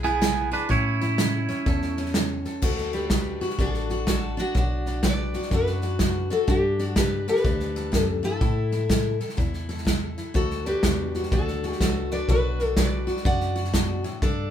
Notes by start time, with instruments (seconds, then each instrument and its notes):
Already playing: tine electric piano B1, steel-string acoustic guitar B2 G#4
0.04 clean electric guitar B3 G#4, steel-string acoustic guitar E4, snare
0.21 steel-string acoustic guitar B3, snare, hi-hat pedal
0.52 clean electric guitar D4 B4, steel-string acoustic guitar G#4, snare
0.69 steel-string acoustic guitar A2 C#4, tine electric piano A2, clean electric guitar E4 C#5, kick, snare
1.01 steel-string acoustic guitar E4, snare
1.18 steel-string acoustic guitar E3, snare, hi-hat pedal
1.49 steel-string acoustic guitar C#4, snare
1.66 tine electric piano E2, steel-string acoustic guitar A2 A4, kick, snare
1.82 snare
1.97 steel-string acoustic guitar C#4, snare
2.05 snare
2.14 steel-string acoustic guitar E3, snare, hi-hat pedal
2.45 steel-string acoustic guitar A4, snare
2.62 tine electric piano D2, steel-string acoustic guitar D3 F#4 A4, kick, snare, crash
2.78 snare
2.93 steel-string acoustic guitar D4 G4 B4, snare
3.10 kick, snare, hi-hat pedal
3.41 steel-string acoustic guitar F#4, snare
3.50 snare
3.58 tine electric piano A1, steel-string acoustic guitar A2 D4 F#4 A4, kick, snare
3.74 snare
3.89 steel-string acoustic guitar F#4, snare
4.07 steel-string acoustic guitar F#3 F#4 A4, kick, snare, hi-hat pedal
4.37 steel-string acoustic guitar D4 F#4, snare
4.55 tine electric piano B1, steel-string acoustic guitar B2 D4 F#4, kick, snare
4.86 steel-string acoustic guitar D4, snare
5.03 steel-string acoustic guitar F#3 B4 D5, kick, snare, hi-hat pedal
5.33 steel-string acoustic guitar F#4, snare
5.42 snare
5.50 tine electric piano F#2, steel-string acoustic guitar F#2 D4 F#4 B4, kick, snare
5.66 snare
5.81 steel-string acoustic guitar F#4, snare
5.99 steel-string acoustic guitar F#3, kick, snare, hi-hat pedal
6.30 steel-string acoustic guitar D4 F#4 A4, snare
6.47 steel-string acoustic guitar G2 D4 G4, tine electric piano G2, kick, snare
6.79 steel-string acoustic guitar D4, snare
6.96 steel-string acoustic guitar G3 G4 B4, kick, snare, hi-hat pedal
7.27 steel-string acoustic guitar G4 A4 B4, snare
7.36 snare
7.44 tine electric piano D2, steel-string acoustic guitar D3 D4, kick, snare
7.60 snare
7.75 steel-string acoustic guitar A4, snare
7.92 steel-string acoustic guitar F#2, kick, snare, hi-hat pedal
7.99 steel-string acoustic guitar A4
8.23 steel-string acoustic guitar G2 E4 A4, snare
8.41 tine electric piano A2, steel-string acoustic guitar A2 E4, kick, snare
8.72 steel-string acoustic guitar E4, snare
8.89 steel-string acoustic guitar E3, kick, snare, hi-hat pedal
9.20 steel-string acoustic guitar A4, snare
9.29 snare
9.37 tine electric piano E2, steel-string acoustic guitar A2 E4, kick, snare
9.53 snare
9.69 steel-string acoustic guitar A4, snare
9.78 snare
9.85 steel-string acoustic guitar E3, kick, snare, hi-hat pedal
10.17 steel-string acoustic guitar E4, snare
10.34 tine electric piano D2, steel-string acoustic guitar D3 F#4 A4, kick, snare
10.51 snare
10.66 steel-string acoustic guitar D4 G4 B4, snare
10.83 tine electric piano E2, kick, snare, hi-hat pedal
11.14 steel-string acoustic guitar F#4, snare
11.23 snare
11.32 tine electric piano D2, steel-string acoustic guitar A2 D4 F#4 A4, kick, snare
11.47 snare
11.63 steel-string acoustic guitar F#4, snare
11.72 snare
11.80 tine electric piano C#2, steel-string acoustic guitar F#3 F#4 A4, kick, snare, hi-hat pedal
12.11 steel-string acoustic guitar D4 B4 D5, snare
12.28 tine electric piano B1, steel-string acoustic guitar B2 F#4 B4, kick, snare
12.59 steel-string acoustic guitar D4, snare
12.77 steel-string acoustic guitar F#3 B4 D5, kick, snare, hi-hat pedal
13.07 steel-string acoustic guitar F#4, snare
13.17 snare
13.25 steel-string acoustic guitar F#2 D4 D5 F#5, tine electric piano F#2, kick, snare
13.41 snare
13.56 steel-string acoustic guitar F#4, snare
13.65 snare
13.73 steel-string acoustic guitar B2, kick, snare, hi-hat pedal
14.04 steel-string acoustic guitar A2, snare
14.22 tine electric piano G2, steel-string acoustic guitar G2 D4 A4, kick, snare